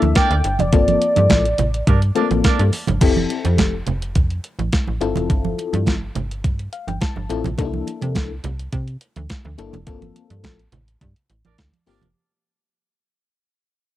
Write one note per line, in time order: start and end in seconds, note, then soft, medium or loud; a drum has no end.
0.00 0.14 D2 medium
0.00 0.41 A#3 medium
0.00 0.41 D4 medium
0.00 0.41 E4 medium
0.00 0.42 A4 medium
0.00 0.17 E5 loud
0.00 closed hi-hat soft
0.00 high conga medium
0.15 0.34 D4 medium
0.15 0.34 A#4 loud
0.15 0.34 D5 loud
0.15 0.61 G5 loud
0.15 kick loud
0.15 snare loud
0.15 closed hi-hat loud
0.15 muted conga soft
0.31 0.42 D2 loud
0.31 closed hi-hat medium
0.44 0.57 G1 loud
0.44 closed hi-hat medium
0.59 0.71 F1 medium
0.59 2.44 D5 loud
0.59 closed hi-hat medium
0.59 high conga medium
0.59 low conga medium
0.72 0.97 G1 loud
0.72 1.46 A#3 medium
0.72 1.46 C4 medium
0.72 1.46 F4 medium
0.72 1.46 A4 medium
0.72 kick loud
0.72 closed hi-hat medium
0.72 muted conga soft
0.88 closed hi-hat medium
0.88 high conga medium
1.02 closed hi-hat medium
1.16 1.28 G2 loud
1.16 closed hi-hat medium
1.16 high conga medium
1.29 1.54 A1 loud
1.29 kick loud
1.29 snare loud
1.29 closed hi-hat loud
1.29 muted conga soft
1.29 high conga medium
1.45 closed hi-hat medium
1.58 1.83 A1 medium
1.58 closed hi-hat medium
1.58 muted conga soft
1.58 low conga medium
1.74 closed hi-hat medium
1.87 2.11 G2 loud
1.87 2.00 D4 medium
1.87 2.00 A#4 medium
1.87 2.00 D5 medium
1.87 kick loud
1.87 closed hi-hat loud
1.87 muted conga soft
1.87 low conga medium
2.02 closed hi-hat soft
2.15 2.22 A3 medium
2.15 2.70 C4 medium
2.15 2.29 D4 medium
2.15 2.70 F4 medium
2.15 2.70 A4 medium
2.15 2.29 A#4 medium
2.15 2.29 D5 loud
2.15 closed hi-hat medium
2.15 muted conga soft
2.22 2.73 A#3 medium
2.31 2.42 A1 medium
2.31 closed hi-hat soft
2.31 high conga medium
2.44 2.62 D4 loud
2.44 2.63 A#4 loud
2.44 2.62 D5 loud
2.44 kick loud
2.44 snare loud
2.44 closed hi-hat loud
2.44 muted conga soft
2.59 2.71 G2 loud
2.59 closed hi-hat medium
2.72 open hi-hat medium
2.72 muted conga soft
2.87 2.99 G1 loud
2.87 closed hi-hat medium
2.87 high conga medium
2.87 low conga medium
3.01 3.25 F1 loud
3.01 3.74 C4 medium
3.01 3.74 E4 medium
3.01 3.74 G4 medium
3.01 3.74 A4 medium
3.01 kick loud
3.01 closed hi-hat loud
3.01 crash loud
3.01 muted conga soft
3.16 high conga medium
3.30 closed hi-hat medium
3.30 muted conga soft
3.44 3.60 F2 loud
3.44 closed hi-hat medium
3.44 high conga medium
3.58 3.83 F1 loud
3.58 kick loud
3.58 snare loud
3.58 closed hi-hat loud
3.58 high conga medium
3.87 4.17 F1 medium
3.87 closed hi-hat medium
3.87 muted conga soft
3.87 low conga medium
4.02 closed hi-hat medium
4.15 4.40 F2 loud
4.15 kick loud
4.15 closed hi-hat medium
4.15 low conga medium
4.31 closed hi-hat soft
4.44 closed hi-hat medium
4.59 4.70 A1 medium
4.59 closed hi-hat soft
4.59 high conga medium
4.72 kick loud
4.72 snare loud
4.72 closed hi-hat medium
4.72 muted conga soft
4.88 4.99 A1 medium
4.88 high conga medium
5.01 5.14 G1 loud
5.01 5.93 C4 medium
5.01 5.93 E4 medium
5.01 5.93 F4 medium
5.01 5.93 A4 loud
5.01 closed hi-hat medium
5.01 muted conga soft
5.16 5.28 F1 medium
5.16 closed hi-hat soft
5.16 high conga medium
5.16 low conga medium
5.30 5.54 G1 loud
5.30 kick loud
5.30 closed hi-hat loud
5.45 high conga medium
5.58 closed hi-hat medium
5.58 muted conga soft
5.73 5.88 G2 loud
5.73 closed hi-hat medium
5.73 high conga medium
5.86 6.11 G1 medium
5.86 kick loud
5.86 snare loud
5.86 closed hi-hat loud
5.86 muted conga soft
5.86 high conga medium
6.15 6.46 G1 medium
6.15 closed hi-hat medium
6.15 muted conga soft
6.15 low conga medium
6.31 closed hi-hat medium
6.44 6.68 G2 medium
6.44 kick loud
6.44 closed hi-hat medium
6.44 low conga medium
6.59 closed hi-hat soft
6.73 6.87 F5 medium
6.73 closed hi-hat medium
6.88 6.99 G1 medium
6.88 7.00 G5 medium
6.88 closed hi-hat soft
6.88 high conga medium
7.01 7.54 A5 medium
7.01 kick loud
7.01 snare loud
7.01 closed hi-hat medium
7.01 muted conga soft
7.16 7.28 G1 medium
7.16 high conga medium
7.29 7.43 A1 medium
7.29 7.48 C4 medium
7.29 7.48 E4 medium
7.29 7.48 F4 medium
7.29 7.49 A4 loud
7.29 closed hi-hat medium
7.29 muted conga soft
7.44 7.56 A#1 loud
7.44 closed hi-hat medium
7.44 high conga medium
7.44 low conga medium
7.58 7.83 C2 loud
7.58 8.31 A#3 medium
7.58 8.31 D4 medium
7.58 7.65 D#4 medium
7.58 8.32 A4 loud
7.58 kick loud
7.58 closed hi-hat loud
7.58 muted conga soft
7.65 8.35 E4 medium
7.74 high conga medium
7.87 closed hi-hat medium
7.87 muted conga soft
8.02 8.17 C3 medium
8.02 closed hi-hat medium
8.02 high conga medium
8.15 8.40 C2 loud
8.15 kick loud
8.15 snare loud
8.15 closed hi-hat loud
8.15 muted conga soft
8.15 high conga medium
8.44 8.68 C2 medium
8.44 closed hi-hat medium
8.44 low conga medium
8.60 closed hi-hat medium
8.73 8.97 C3 loud
8.73 kick loud
8.73 closed hi-hat loud
8.73 low conga medium
8.88 closed hi-hat soft
9.01 closed hi-hat medium
9.16 9.28 D2 loud
9.16 closed hi-hat soft
9.16 high conga medium
9.30 kick loud
9.30 snare loud
9.30 closed hi-hat loud
9.45 9.56 D2 loud
9.45 high conga soft
9.58 9.71 G1 loud
9.58 9.77 A#3 medium
9.58 9.77 D4 medium
9.58 9.77 E4 medium
9.58 9.77 A4 loud
9.58 closed hi-hat medium
9.58 muted conga soft
9.73 9.85 F1 loud
9.73 closed hi-hat soft
9.73 high conga medium
9.73 low conga medium
9.86 10.11 G1 loud
9.86 10.60 A#3 medium
9.86 10.60 C4 medium
9.86 10.60 F4 medium
9.86 10.60 A4 loud
9.86 kick loud
9.86 closed hi-hat loud
9.86 muted conga soft
10.02 closed hi-hat soft
10.02 high conga medium
10.16 closed hi-hat medium
10.16 muted conga soft
10.30 10.46 G2 medium
10.30 closed hi-hat medium
10.30 high conga medium
10.43 10.68 A1 medium
10.43 kick loud
10.43 snare loud
10.43 closed hi-hat loud
10.43 high conga medium
10.59 closed hi-hat soft
10.72 10.97 A1 medium
10.72 closed hi-hat medium
10.72 low conga medium
10.88 closed hi-hat medium
11.01 11.14 G2 loud
11.01 kick loud
11.01 closed hi-hat medium
11.01 muted conga soft
11.01 low conga medium
11.16 closed hi-hat soft
11.30 11.43 A1 medium
11.30 closed hi-hat medium
11.30 muted conga soft
11.45 11.56 A1 medium
11.45 11.56 D4 medium
11.45 11.56 A#4 medium
11.45 11.56 D5 medium
11.45 closed hi-hat soft
11.45 high conga medium
11.58 11.71 D2 loud
11.58 kick loud
11.58 snare loud
11.58 closed hi-hat medium
11.73 closed hi-hat soft
11.73 high conga soft
11.86 12.00 G1 loud
11.86 12.05 A#3 medium
11.86 12.06 C4 medium
11.86 12.05 D4 medium
11.86 12.06 F4 medium
11.86 12.06 G4 loud
11.86 12.05 A#4 loud
11.86 12.05 D5 loud
11.86 open hi-hat medium
11.86 muted conga soft
12.02 12.14 F1 medium
12.02 closed hi-hat soft
12.02 high conga medium
12.02 low conga medium